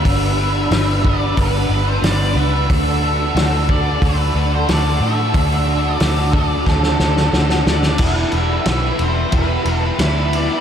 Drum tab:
CC |----------------|----------------|----------------|x---------------|
RD |----------------|----------------|----------------|--x-x-x-x-x-x-x-|
HH |o---o---o---o---|o---o---o---o---|o---o-----------|----------------|
SD |----o-------o---|----o-------o---|----o---oooooooo|----o-------o---|
BD |o-----o-o-------|o-----o-o-------|o-----o-o-------|o-------o-------|